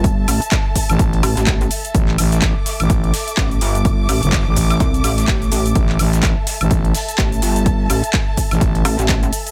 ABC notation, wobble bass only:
X:1
M:4/4
L:1/16
Q:"Swing 16ths" 1/4=126
K:Cmix
V:1 name="Wobble bass" clef=bass
G,,,2 A,,, z6 z A,,, A,,,3 z2 | z12 A,,,2 G,,,2- | G,,,2 A,,, z4 z C,,2 A,,,4 A,,,2 | z12 A,,,2 G,,,2- |
G,,,2 A,,, z6 z A,,, A,,,3 z2 |]